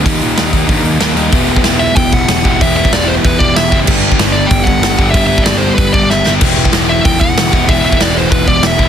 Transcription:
<<
  \new Staff \with { instrumentName = "Lead electric guitar" } { \time 4/4 \key e \minor \tempo 4 = 189 r1 | r4. e''8 g''8 fis''4. | e''8 e''8 d''8 c''8 b'8 d''8 e''8. r16 | r4. d''8 g''8 fis''4. |
e''8 e''8 d''8 c''8 b'8 d''8 e''8. r16 | r4. e''8 g''8 fis''4. | e''8 e''8 d''8 c''8 b'8 d''8 e''8. r16 | }
  \new Staff \with { instrumentName = "Overdriven electric guitar" } { \time 4/4 \key e \minor <ees g bes ees'>4 <ees g bes ees'>8 <ees g bes ees'>8 <ees g bes ees'>4 <ees g bes ees'>8 <ees g bes ees'>8 | <e b e' g'>2.~ <e b e' g'>8 <e b e' g'>8 | <e b e' g'>2.~ <e b e' g'>8 <e b e' g'>8 | <g b d' g'>2.~ <g b d' g'>8 <g b d' g'>8 |
<g b d' g'>2.~ <g b d' g'>8 <g b d' g'>8 | <e b e' g'>2.~ <e b e' g'>8 <e b e' g'>8 | <e b e' g'>2.~ <e b e' g'>8 <e b e' g'>8 | }
  \new Staff \with { instrumentName = "Picked electric bass" } { \clef bass \time 4/4 \key e \minor ees,8 bes,8 ees,8 ees,8 g,8 ees,8 ees,8 ees,8 | e,,4 e,,4 e,,8 e,,8 e,,8 e,,8 | e,,4 e,,4 e,,8 e,,8 e,,8 fis,,8 | g,,4 g,,4 g,,8 g,,8 g,,8 g,,8 |
g,,4 g,,4 g,,8 g,,8 g,,8 g,,8 | e,,4 e,,4 e,,8 e,,8 e,,8 e,,8 | e,,4 e,,4 e,,8 e,,8 e,,8 e,,8 | }
  \new DrumStaff \with { instrumentName = "Drums" } \drummode { \time 4/4 <hho bd>8 hho8 <hho sn>8 <hho bd>8 <hho bd>8 hho8 <hho sn>8 hho8 | <hho bd>8. bd16 <hho sn>4 <hho bd>8 bd8 <hho sn>8 bd8 | <hho bd>8. bd16 <hho sn>4 <hho bd>8 bd8 <hho sn>8 bd8 | <cymc bd>8. bd16 <hho sn>4 <hho bd>8 bd8 <hho sn>8 bd8 |
<hho bd>8. bd16 <hho sn>4 <hho bd>8 bd8 sn8 sn8 | <cymc hho bd>8. bd16 <hho sn>4 <hho bd>8 bd8 <hho sn>8 bd8 | <hho bd>8. bd16 <hho sn>4 <hho bd>8 bd8 <hho sn>8 bd8 | }
>>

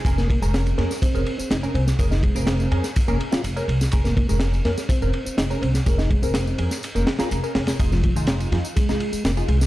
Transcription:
<<
  \new Staff \with { instrumentName = "Synth stab" } { \time 4/4 \key bes \dorian \tempo 4 = 124 <des' aes' bes'>16 r8 <des' aes' bes'>8. <des' aes' bes'>16 r8 <des' aes' bes'>16 r8. <des' aes' bes'>16 r8 | <des' aes' bes'>16 r8 <des aes' bes'>8. <des' aes' bes'>16 r8 <des' aes' bes'>16 r8. <des' aes' bes'>16 r8 | <des' aes' bes'>16 r8 <des' aes' bes'>8. <des' aes' bes'>16 r8 <des' aes' bes'>16 r8. <des' aes' bes'>16 r8 | <des' aes' bes'>16 r8 <des aes' bes'>8. <des' aes' bes'>16 r8 <des' aes' bes'>16 r16 <des' aes' bes'>8 <des' aes' bes'>16 <des' aes' bes'>8 |
<ees' f' aes'>16 r8 <ees' f' aes'>8. <ees' f' aes'>16 r8 <ees' f' aes'>16 r8. <ees' f' aes'>16 r8 | }
  \new Staff \with { instrumentName = "Tonewheel organ" } { \time 4/4 \key bes \dorian r16 bes16 bes16 aes16 r8 bes16 r16 c'8. c'16 ees'16 r16 c'16 r16 | r16 ees'16 aes16 c'4 r8 bes16 r16 f'16 r4 | r16 bes16 bes16 aes16 r8 bes16 r16 c'8. c'16 ees'16 r16 c'16 r16 | r16 ees'16 aes16 c'4 r8 bes16 r16 f'16 r4 |
r16 f16 f16 ees16 r8 f16 r16 aes8. aes16 bes16 r16 aes16 r16 | }
  \new Staff \with { instrumentName = "Upright bass" } { \clef bass \time 4/4 \key bes \dorian f,,8 r16 f,,8 r16 f,16 r8 f,,16 r8 f,,16 r16 c,16 r16 | f,,8 r16 f,,8 r16 f,16 r8 f,,16 r8 f,,16 r16 c,16 r16 | f,,8 r16 f,,8 r16 f,16 r8 f,,16 r8 f,,16 r16 c,16 r16 | f,,8 r16 f,,8 r16 f,16 r8 f,,16 r8 f,,16 r16 f,,16 r16 |
f,,8 r16 f,,8 r16 f,16 r8 f,,16 r8 f,,16 r16 c,16 r16 | }
  \new DrumStaff \with { instrumentName = "Drums" } \drummode { \time 4/4 <bd cymr tamb>16 <sn tamb>16 <bd cymr>16 tamb16 <cymr sn tamb>16 <cymr tamb>16 <cymr sn>16 <sn tamb>16 <bd cymr tamb>16 tamb16 cymr16 tamb16 <cymr sn tamb>16 tamb16 cymr16 <sn tamb>16 | <bd cymr tamb>16 <sn tamb>16 <bd cymr>16 tamb16 <cymr sn tamb>16 tamb16 cymr16 <sn tamb>16 <bd cymr tamb>16 tamb16 cymr16 <sn tamb>16 <cymr tamb>16 tamb16 cymr16 <sn tamb>16 | <bd cymr tamb>16 <sn tamb>16 <bd cymr>16 tamb16 <cymr sn tamb>16 <cymr tamb>16 <cymr sn>16 <sn tamb>16 <bd cymr tamb>16 tamb16 cymr16 tamb16 <cymr sn tamb>16 tamb16 cymr16 <sn tamb>16 | <bd cymr tamb>16 <sn tamb>16 <bd cymr>16 tamb16 <cymr sn tamb>16 tamb16 cymr16 <sn tamb>16 <cymr tamb>16 tamb16 <cymr sn>16 <sn tamb>16 <cymr tamb>16 tamb16 <cymr sn>16 <cymr sn tamb>16 |
<bd cymr tamb>16 <sn tamb>16 <bd cymr>16 tamb16 <cymr sn tamb>16 <cymr tamb>16 <cymr sn>16 tamb16 <bd cymr tamb>16 <sn tamb>16 cymr16 tamb16 <cymr sn tamb>16 tamb16 cymr16 <sn tamb>16 | }
>>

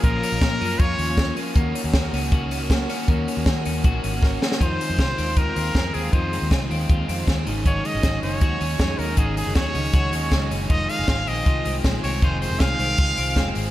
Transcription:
<<
  \new Staff \with { instrumentName = "Trumpet" } { \time 4/4 \key f \phrygian \tempo 4 = 158 bes'2 des''4. r8 | r1 | r1 | c''2 bes'4. aes'8 |
c''4 r2. | des''8 ees''4 des''2 bes'8 | aes'8 aes'8 des''2~ des''8 r8 | ees''8 f''4 ees''4. r8 des''8 |
c''8 c''8 f''2~ f''8 r8 | }
  \new Staff \with { instrumentName = "Clean electric guitar" } { \time 4/4 \key f \phrygian <f bes des' f'>8 des'8 bes8 des'8 f'8 des'8 bes8 des'8 | bes8 des'8 bes8 des'8 ges'8 des'8 bes8 des'8 | bes8 des'8 bes8 des'8 ges'8 des'8 bes8 des'8 | <ees f'>8 aes8 f'8 c'8 f'8 c'8 aes8 c'8 |
<ees f'>8 aes8 f'8 c'8 f'8 c'8 aes8 ees8 | <ees ges'>8 aes8 ges'8 des'8 ges'8 des'8 aes8 des'8 | <ees ges'>8 aes8 ges'8 des'8 ges'8 des'8 aes8 des'8 | <ees f'>8 aes8 f'8 c'8 f'8 c'8 aes8 c'8 |
<ees f'>8 aes8 f'8 c'8 f'8 c'8 aes8 c'8 | }
  \new Staff \with { instrumentName = "Overdriven electric guitar" } { \time 4/4 \key f \phrygian <bes, f bes des' f'>8. <bes des' f'>8. <f bes des' f'>8 <bes, f bes des' f'>8. <bes des' f'>8. <f bes des' f'>8 | <ees bes des' ges'>8. <bes des' ges'>8. <ees bes des' ges'>8 <ees bes des' ges'>8. <bes des' ges'>8. <ees bes des' ges'>8 | <ees bes des' ges'>8. <bes des' ges'>8. <ees bes des' ges'>8 <ees bes des' ges'>8. <bes des' ges'>8. <ees bes des' ges'>8 | <f, c ees aes c' f'>8. <ees aes c' f'>8. <ees aes c' f'>4 <ees aes c' f'>8 <ees aes c' f'>8. <ees aes c' f'>16 |
<f, c ees aes c' f'>8. <ees aes c' f'>8. <ees aes c' f'>4 <ees aes c' f'>8 <ees aes c' f'>8 <aes, des ges des' ees' aes'>8~ | <aes, des ges des' ees' aes'>8. <ges des' ees' aes'>8. <ges des' ees' aes'>4 <ges des' ees' aes'>8 <ges des' ees' aes'>8. <ges des' ees' aes'>16 | <aes, des ges des' ees' aes'>8. <ges des' ees' aes'>8. <ges des' ees' aes'>4 <ges des' ees' aes'>8 <ges des' ees' aes'>8. <ges des' ees' aes'>16 | <f, c ees aes c' aes'>8. <ees aes c' aes'>8. <ees aes c' aes'>4 <ees aes c' aes'>8 <ees aes c' aes'>8. <ees aes c' aes'>16 |
<f, c ees aes c' aes'>8. <ees aes c' aes'>8. <ees aes c' aes'>4 <ees aes c' aes'>8 <ees aes c' aes'>8. <ees aes c' aes'>16 | }
  \new Staff \with { instrumentName = "Fingered electric bass" } { \clef bass \time 4/4 \key f \phrygian bes,,8 r16 bes,,16 bes,8 ges,8 f,8 ees,4 r8 | ees,8 r16 ees,8. des,2 r8 | ees,8 r16 ees,16 ees8 ees,8 bes,,8 aes,,4 r8 | f,8 r16 f,16 c,8 ees,4 ees,8 f,8 ees,8 |
f,8. ees,16 r8 ees,8 ees,8 f,8 ees,8 aes,,8~ | aes,,8 r16 aes,,16 aes,,8 ges,,8 ees,8 ees,8 f,8 ees,8 | aes,,8. ges,,16 ees,8 des,8 des,8 ees,8 des,8 ges,,8 | f,,8 r16 f,,16 aes,,8 bes,,8 c,8 c,8 bes,,8 c,8 |
f,,8. f,,16 c,8 c,8 des,8 c,8 f,,8 aes,,8 | }
  \new DrumStaff \with { instrumentName = "Drums" } \drummode { \time 4/4 <hh bd>8 hho8 <hh bd sn>8 hho8 <hh bd>8 hho8 <hh bd sn>8 hho8 | <hh bd>8 hho8 <hh bd sn>8 hho8 <hh bd>8 hho8 <hh bd sn>8 hho8 | <hh bd>8 hho8 <hh bd sn>8 hho8 <hh bd>8 hho8 <bd sn>8 sn16 sn16 | <hh bd>8 hho8 <hh bd sn>8 hho8 <hh bd>8 hho8 <hh bd sn>8 hho8 |
<hh bd>8 hho8 <hh bd sn>8 hho8 <hh bd>8 hho8 <hh bd sn>8 hho8 | <hh bd>8 hho8 <hh bd sn>8 hho8 <hh bd>8 hho8 <hh bd sn>8 hho8 | <hh bd>8 hho8 <hh bd sn>8 hho8 <hh bd>8 hho8 <hh bd sn>8 hho8 | <hh bd>8 hho8 <hh bd sn>8 hho8 <hh bd>8 hho8 <hh bd sn>8 hho8 |
<hh bd>8 hho8 <hh bd sn>8 hho8 <hh bd>8 hho8 <hh bd sn>8 hho8 | }
>>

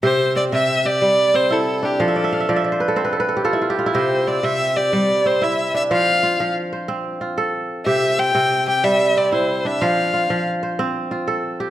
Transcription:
<<
  \new Staff \with { instrumentName = "Violin" } { \time 12/8 \key c \major \tempo 4. = 123 c''4 d''8 e''4 d''4. c''8 a'4 g'8 | a'2 r1 | c''4 d''8 e''4 d''4. c''8 e''4 e''8 | f''2 r1 |
e''4 g''4. g''8 e''4 d''8 c''4 e''8 | f''2 r1 | }
  \new Staff \with { instrumentName = "Kora" } { \time 12/8 \key c \major << { r1. | f''16 e''16 d''16 e''16 f''16 e''16 d''16 e''16 d''16 c''16 b'16 a'16 c''16 b'16 a'16 b'16 a'16 g'16 f'16 e'16 f'16 g'16 f'16 e'16~ | e'16 r1 r4. r16 | r1. |
r1. | r1. | } \\ { g'4 c'4. g'4. c'4. d'8~ | d'8 r1 r4. | g'4 c'4. g'4. c'4. d'8 | c''4 f'4. c''4. f'4. r8 |
g'4 c'4. g'4. c'4. d'8 | c''4 f'4. c''4. f'4. g'8 | } >> }
  \new Staff \with { instrumentName = "Kora" } { \clef bass \time 12/8 \key c \major c4 r8 c4 r8 g4 r8 e'4 r8 | f4 r8 f4 r8 c'4 r8 a'4 r8 | c4 r8 c4 r8 g4 r8 e'4 r8 | f4 r8 f4 r8 c'4 r8 a'4 r8 |
c4 r8 c4 r8 g4 r8 e'4 r8 | f4 r8 f4 r8 c'4 r8 a'4 r8 | }
>>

